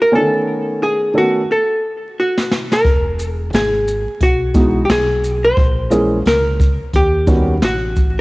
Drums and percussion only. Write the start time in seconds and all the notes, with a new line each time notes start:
2.37 snare
2.51 snare
2.72 snare
2.85 kick, closed hi-hat
3.19 shaker
3.53 snare, closed hi-hat
3.88 shaker
4.20 kick, closed hi-hat
4.54 kick, shaker
4.89 snare, closed hi-hat
5.24 shaker
5.57 kick, closed hi-hat
5.91 shaker
6.25 snare, closed hi-hat
6.60 kick, shaker
6.93 kick, closed hi-hat
7.27 kick, shaker
7.62 snare, closed hi-hat
7.96 kick, shaker